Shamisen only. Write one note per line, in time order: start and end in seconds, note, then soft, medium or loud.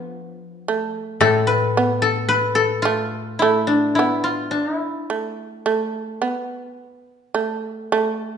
0.00 0.68 B3 medium
0.68 1.20 A3 medium
1.21 1.76 A3 medium
1.77 2.85 B3 medium
2.85 3.41 A3 medium
3.42 3.98 A3 medium
3.99 5.10 B3 medium
5.10 5.65 A3 soft
5.66 6.21 A3 medium
6.22 7.34 B3 medium
7.34 7.91 A3 medium
7.92 8.38 A3 medium